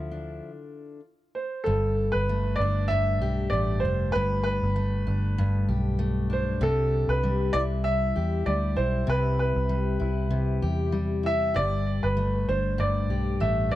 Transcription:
Already playing: fingered electric bass D2, steel-string acoustic guitar D3 F3 E4 A4, upright piano F4
0.11 steel-string acoustic guitar D4
1.35 upright piano C5
1.64 fingered electric bass G1, steel-string acoustic guitar G2, upright piano A4
2.12 fingered electric bass G1, upright piano B4
2.29 steel-string acoustic guitar A3
2.56 upright piano D5
2.60 fingered electric bass G1, steel-string acoustic guitar D4
2.88 steel-string acoustic guitar G2, upright piano E5
3.21 fingered electric bass B1, steel-string acoustic guitar G4
3.50 fingered electric bass A1, steel-string acoustic guitar A3, upright piano D5
3.80 fingered electric bass F1, upright piano C5
3.85 steel-string acoustic guitar D4
4.12 fingered electric bass G1, steel-string acoustic guitar G2, upright piano B4
4.43 upright piano B4
4.63 fingered electric bass G1
4.76 steel-string acoustic guitar A3
5.07 fingered electric bass G1, steel-string acoustic guitar D4
5.38 steel-string acoustic guitar G2
5.69 fingered electric bass B1, steel-string acoustic guitar G4
5.99 steel-string acoustic guitar A3
6.30 steel-string acoustic guitar D4, upright piano C5
6.61 fingered electric bass C2, steel-string acoustic guitar C3, upright piano A4
7.08 fingered electric bass C2, upright piano B4
7.23 steel-string acoustic guitar G3
7.53 fingered electric bass C2, steel-string acoustic guitar E4, upright piano D5
7.84 upright piano E5
8.16 fingered electric bass E2, steel-string acoustic guitar G4
8.46 fingered electric bass D2, steel-string acoustic guitar G3, upright piano D5
8.76 fingered electric bass B1, steel-string acoustic guitar E4, upright piano C5
9.07 fingered electric bass C2, steel-string acoustic guitar C3, upright piano B4
9.39 upright piano B4
9.56 fingered electric bass C2
9.69 steel-string acoustic guitar G3
10.00 fingered electric bass C2, steel-string acoustic guitar E4
10.31 steel-string acoustic guitar C3
10.62 fingered electric bass E2, steel-string acoustic guitar G4
10.92 steel-string acoustic guitar G3
11.23 steel-string acoustic guitar E4, upright piano E5
11.54 fingered electric bass G1, steel-string acoustic guitar G2, upright piano D5
12.03 fingered electric bass G1, upright piano B4
12.17 steel-string acoustic guitar A3
12.49 fingered electric bass G1, steel-string acoustic guitar D4, upright piano C5
12.78 steel-string acoustic guitar G2, upright piano D5
13.10 fingered electric bass B1, steel-string acoustic guitar G4
13.40 fingered electric bass A1, steel-string acoustic guitar A3, upright piano E5
13.71 fingered electric bass F1, steel-string acoustic guitar D4, upright piano D5

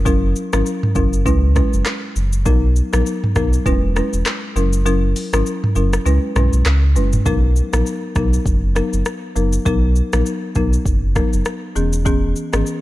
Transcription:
Already playing: sub bass F#1
0.06 marimba F#3 C#4 E4 A#4, kick, shaker
0.36 shaker
0.53 sub bass G#1, marimba F#3 C#4 E4 A#4, cross-stick, shaker
0.66 shaker
0.83 mid tom
0.95 sub bass F#1, marimba F#3 C#4 E4 A#4, kick, shaker
1.13 shaker
1.26 sub bass C#2, marimba G#3 C#4 E4 B4, kick, shaker
1.55 marimba G#3 C#4 E4 B4, kick, cross-stick, shaker
1.73 sub bass F#1, shaker
1.85 cross-stick, clap, shaker
2.16 sub bass F#1, shaker
2.33 shaker
2.46 sub bass B1, marimba F#3 B3 D#4 A#4, kick, shaker
2.76 shaker
2.93 sub bass A#1, marimba F#3 B3 D#4 A#4, cross-stick, shaker
3.06 shaker
3.24 mid tom
3.35 sub bass B1, marimba F#3 B3 D#4 A#4, kick, cross-stick, shaker
3.53 shaker
3.66 sub bass E1, marimba G#3 C#4 E4 B4, kick, shaker
3.96 marimba G#3 C#4 E4 B4, cross-stick, shaker
4.13 sub bass E1, shaker
4.26 cross-stick, clap, shaker
4.56 sub bass F#1, marimba F#3 C#4 E4 A#4, shaker
4.73 shaker
4.86 marimba F#3 C#4 E4 A#4, shaker
5.16 open hi-hat, shaker
5.33 sub bass G#1, marimba F#3 C#4 E4 A#4, cross-stick, shaker
5.46 shaker
5.64 mid tom
5.75 sub bass F#1, marimba F#3 C#4 E4 A#4, shaker
5.93 cross-stick, shaker
6.06 sub bass C#2, marimba G#3 C#4 E4 B4, shaker
6.36 sub bass B1, marimba G#3 C#4 E4 B4, cross-stick, mid tom, shaker
6.53 sub bass B1, shaker
6.65 sub bass C#2, cross-stick, clap, shaker
6.96 sub bass F#1, marimba G#3 C#4 E4 B4, shaker
7.13 mid tom, shaker
7.26 sub bass B1, marimba F#3 B3 D#4 A#4, kick, shaker
7.56 shaker
7.73 sub bass A#1, marimba F#3 B3 D#4 A#4, cross-stick, shaker
7.86 shaker
8.15 sub bass B1, marimba F#3 B3 D#4 A#4, kick, cross-stick, shaker
8.33 shaker
8.46 sub bass F#1, kick, shaker
8.75 marimba F#3 B3 D#4 A#4, cross-stick, shaker
8.93 sub bass F#1, shaker
9.05 cross-stick, shaker
9.36 sub bass F#1, marimba F#3 B3 D#4 A#4, shaker
9.53 shaker
9.66 sub bass B1, marimba F#3 B3 D#4 A#4, kick, shaker
9.96 shaker
10.13 sub bass A#1, marimba F#3 B3 D#4 A#4, cross-stick, shaker
10.26 shaker
10.55 sub bass B1, marimba F#3 B3 D#4 A#4, kick, shaker
10.73 shaker
10.86 sub bass F#1, kick, shaker
11.16 marimba F#3 B3 D#4 A#4, kick, cross-stick, shaker
11.33 sub bass F#1, shaker
11.45 cross-stick, shaker
11.76 sub bass E1, marimba E3 B3 C#4 G#4, shaker
11.93 shaker
12.05 marimba E3 B3 C#4 G#4, kick, shaker
12.36 shaker
12.53 sub bass G#1, marimba E3 B3 C#4 G#4, cross-stick, shaker
12.66 shaker

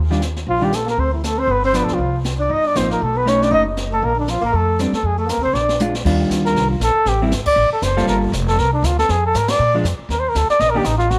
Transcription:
Already playing: upright bass D#2
0.10 hollow-body jazz guitar D#3 G3 D4 F4, snare
0.22 snare, hi-hat pedal
0.36 snare
0.47 upright bass A#1, tenor saxophone F3, flugelhorn F4, brush sweep
0.60 hollow-body jazz guitar D#3 G3 D4 F4, tenor saxophone G3
0.64 flugelhorn G4
0.71 tenor saxophone A3, snare, hi-hat pedal
0.75 flugelhorn A4
0.86 tenor saxophone A#3, snare
0.90 flugelhorn A#4
0.97 upright bass D2, tenor saxophone C4, flugelhorn C5, brush sweep
1.12 tenor saxophone E3, flugelhorn E4
1.23 tenor saxophone A3, flugelhorn A4, snare, hi-hat pedal
1.38 tenor saxophone C4, flugelhorn C5
1.47 upright bass G1, tenor saxophone B3, flugelhorn B4, brush sweep
1.64 tenor saxophone C4, flugelhorn C5
1.73 hollow-body jazz guitar F3 B3 D4, tenor saxophone B3, flugelhorn B4, snare, hi-hat pedal
1.82 upright bass B1, tenor saxophone A3, flugelhorn A4
1.88 upright bass C#2, tenor saxophone F3, snare
1.94 flugelhorn F4
1.98 upright bass C2, brush sweep
2.24 snare, hi-hat pedal
2.39 tenor saxophone D4, flugelhorn D5
2.50 upright bass G1, tenor saxophone D#4, flugelhorn D#5, brush sweep
2.65 tenor saxophone D4, flugelhorn D5
2.75 upright bass A1, hollow-body jazz guitar F3 A#3 D#4, tenor saxophone C4, flugelhorn C5, snare, hi-hat pedal
2.90 tenor saxophone A#3, flugelhorn A#4, snare
3.01 upright bass B1, tenor saxophone A3, flugelhorn A4, brush sweep
3.16 tenor saxophone B3, flugelhorn B4
3.26 hollow-body jazz guitar A3 C#4 D#4, tenor saxophone C#4, flugelhorn C#5, snare, hi-hat pedal
3.42 tenor saxophone D4, flugelhorn D5, snare
3.51 upright bass F#1, tenor saxophone D#4, flugelhorn D#5, brush sweep
3.77 snare, hi-hat pedal
3.90 tenor saxophone A3, flugelhorn A4
4.02 upright bass A#1, tenor saxophone A#3, flugelhorn A#4, brush sweep
4.16 tenor saxophone D3
4.20 flugelhorn D4
4.28 tenor saxophone F3, flugelhorn F4, snare, hi-hat pedal
4.41 upright bass A1, tenor saxophone A#3, flugelhorn A#4
4.53 upright bass F2, tenor saxophone A3, flugelhorn A4, brush sweep
4.79 hollow-body jazz guitar G3 C4 D4, snare, hi-hat pedal
4.91 tenor saxophone A3, flugelhorn A4, muted upright bass stroke, snare
5.03 upright bass F2, tenor saxophone G#3, flugelhorn G#4, brush sweep
5.18 tenor saxophone A3, flugelhorn A4
5.27 tenor saxophone A#3, flugelhorn A#4, snare, hi-hat pedal
5.37 upright bass D#2
5.41 upright bass C2, tenor saxophone C4, flugelhorn C5
5.53 upright bass A#1, tenor saxophone D4, flugelhorn D5, snare
5.69 snare
5.80 hollow-body jazz guitar G#3 D4 F4, hi-hat pedal, high tom
5.95 snare
6.05 upright bass D#2, hollow-body jazz guitar D#3 G3 D4 F4, brush sweep, kick, snare, crash
6.30 upright bass D2, snare, hi-hat pedal
6.46 flugelhorn A#4, snare
6.55 upright bass C2, brush sweep, snare
6.71 flugelhorn F4
6.80 upright bass A#1, flugelhorn A4, snare, hi-hat pedal
6.95 muted upright bass stroke
7.05 upright bass A1, flugelhorn G4, brush sweep, snare
7.22 hollow-body jazz guitar G3 C4 E4
7.31 upright bass G1, snare, hi-hat pedal
7.46 flugelhorn D5, muted upright bass stroke, kick, crash
7.56 upright bass A1, brush sweep
7.70 flugelhorn A4, muted upright bass stroke
7.82 upright bass F#1, flugelhorn C5, snare, hi-hat pedal
7.97 hollow-body jazz guitar G3 A#3 F4 A4, snare
8.07 upright bass G1, flugelhorn A#4, brush sweep, snare
8.32 upright bass F1, snare, hi-hat pedal
8.48 flugelhorn A4, snare
8.57 upright bass C2, flugelhorn A#4, brush sweep, snare
8.73 flugelhorn D4
8.82 upright bass D2, flugelhorn F4, snare, hi-hat pedal
8.99 flugelhorn A4, snare
9.09 upright bass F2, flugelhorn G#4, brush sweep, snare
9.26 flugelhorn A4
9.34 upright bass G#2, flugelhorn A#4, snare, hi-hat pedal
9.48 flugelhorn D5, snare, ride
9.59 upright bass A#2, brush sweep
9.75 hollow-body jazz guitar F3 G#3 D4
9.84 upright bass F2, snare, hi-hat pedal
9.99 muted upright bass stroke
10.09 upright bass D#2, flugelhorn A#4, brush sweep, snare
10.19 flugelhorn C5
10.29 flugelhorn A#4
10.35 upright bass D2, flugelhorn A4, snare, hi-hat pedal
10.50 flugelhorn D5, snare
10.60 upright bass A#1, flugelhorn D#5, brush sweep, snare
10.70 flugelhorn A#4
10.74 hollow-body jazz guitar D#3 A#3 D4 G4, flugelhorn G4
10.84 upright bass A1, flugelhorn D#4, snare, hi-hat pedal
10.98 flugelhorn F4, snare
11.10 upright bass G#1, flugelhorn F#4, brush sweep, snare

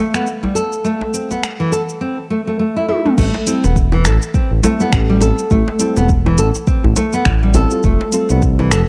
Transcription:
Already playing: synth keys G3 A4 F5, nylon-string guitar A3
0.14 nylon-string guitar B3, finger snap, shaker
0.27 shaker
0.43 nylon-string guitar G3, djembe tone
0.55 nylon-string guitar A4, shaker
0.73 shaker
0.84 nylon-string guitar A3, shaker
1.01 djembe slap
1.14 nylon-string guitar C4, shaker
1.31 nylon-string guitar B3, djembe slap, shaker
1.43 finger snap, shaker
1.60 nylon-string guitar E3
1.72 nylon-string guitar A4, shaker
1.89 shaker
2.01 nylon-string guitar C4
2.30 nylon-string guitar A3
2.47 nylon-string guitar A3
2.59 nylon-string guitar A3
2.76 nylon-string guitar E4
2.88 nylon-string guitar E4, high tom
3.06 nylon-string guitar A3, mid tom
3.18 analog synth bass A1, nylon-string guitar A3, kick, crash, shaker
3.34 djembe slap
3.46 synth keys G3 C4 E4 A4, nylon-string guitar C4, closed hi-hat, shaker
3.64 analog synth bass E1, nylon-string guitar B3, djembe slap, shaker
3.76 kick, shaker
3.92 nylon-string guitar E3, djembe tone
4.05 analog synth bass A1, nylon-string guitar A4, finger snap, closed hi-hat, shaker
4.22 shaker
4.34 nylon-string guitar C4, kick, shaker
4.51 analog synth bass A1
4.62 synth keys G3 C4 E4 A4, nylon-string guitar A3, closed hi-hat, djembe slap, djembe tone, shaker
4.79 synth keys G3 E4 A4, nylon-string guitar B3, shaker
4.93 analog synth bass A1, finger snap, kick, shaker
5.10 nylon-string guitar G3
5.20 synth keys G3 C4 E4 A4, nylon-string guitar A4, closed hi-hat, djembe tone, shaker
5.39 shaker
5.51 analog synth bass A1, nylon-string guitar A3, kick, shaker
5.68 djembe slap
5.79 synth keys G3 C4 E4 A4, nylon-string guitar C4, closed hi-hat, shaker
5.97 analog synth bass E1, nylon-string guitar B3, djembe slap, shaker
6.09 kick, shaker
6.26 nylon-string guitar E3, djembe tone
6.38 analog synth bass A1, nylon-string guitar A4, closed hi-hat, shaker
6.55 djembe tone, shaker
6.67 nylon-string guitar C4, kick, shaker
6.84 analog synth bass A1, djembe bass
6.96 nylon-string guitar A3, closed hi-hat, djembe tone, shaker
7.13 nylon-string guitar B3, shaker
7.25 analog synth bass A1, finger snap, kick, shaker
7.43 nylon-string guitar G3
7.54 synth keys G3 C4 E4 A4, nylon-string guitar A4, closed hi-hat, djembe bass, shaker
7.70 synth keys G3 C4 F4 A4, shaker
7.83 analog synth bass F1, nylon-string guitar A3, kick, shaker
8.01 djembe slap
8.12 synth keys G3 C4 F4 A4, nylon-string guitar C4, closed hi-hat, shaker
8.29 analog synth bass C2, nylon-string guitar B3, djembe slap, shaker
8.42 kick, shaker
8.59 nylon-string guitar E3, djembe tone
8.71 analog synth bass F1, nylon-string guitar A4, finger snap, closed hi-hat, shaker

